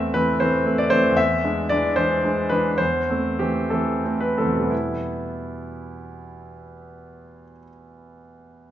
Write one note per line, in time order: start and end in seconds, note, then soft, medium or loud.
0.00 1.12 E2 soft
0.00 0.12 A3 soft
0.00 0.12 C4 soft
0.00 0.14 E5 medium
0.14 0.38 E3 soft
0.14 0.38 A3 soft
0.14 0.38 C4 soft
0.14 0.40 B4 medium
0.40 0.63 E3 soft
0.40 0.64 A3 soft
0.40 0.64 C4 soft
0.40 0.78 C5 medium
0.66 0.89 A3 soft
0.66 0.89 C4 soft
0.78 0.91 D5 medium
0.90 1.15 E3 soft
0.90 1.15 A3 soft
0.90 1.15 C4 soft
0.90 1.17 C5 medium
1.12 1.40 E2 soft
1.17 1.70 E5 medium
1.44 1.68 G#3 soft
1.44 1.68 D4 soft
1.69 1.95 E3 soft
1.69 1.95 G#3 soft
1.69 1.95 D4 soft
1.69 1.97 D5 medium
1.96 2.22 E3 soft
1.96 2.22 G#3 soft
1.96 2.22 D4 soft
1.96 2.51 C5 medium
2.25 2.49 G#3 soft
2.25 2.49 D4 soft
2.49 2.77 E3 soft
2.49 2.77 G#3 soft
2.49 2.77 D4 soft
2.49 2.78 B4 medium
2.78 3.08 E2 soft
2.78 3.38 C5 medium
3.10 3.37 A3 soft
3.10 3.37 C4 soft
3.39 3.68 E3 soft
3.39 3.69 A3 soft
3.39 3.69 C4 soft
3.39 3.71 G4 medium
3.70 4.02 E3 soft
3.70 4.02 A3 soft
3.70 4.02 C4 soft
3.70 4.21 A4 soft
4.05 4.35 A3 soft
4.05 4.35 C4 soft
4.21 4.38 B4 soft
4.38 4.68 E3 soft
4.38 4.69 A3 soft
4.38 4.69 C4 soft
4.38 4.71 A4 soft
4.45 7.44 E2 soft
4.52 7.51 B2 soft
4.59 7.58 G3 soft
4.65 7.64 B3 soft
4.70 7.69 E4 soft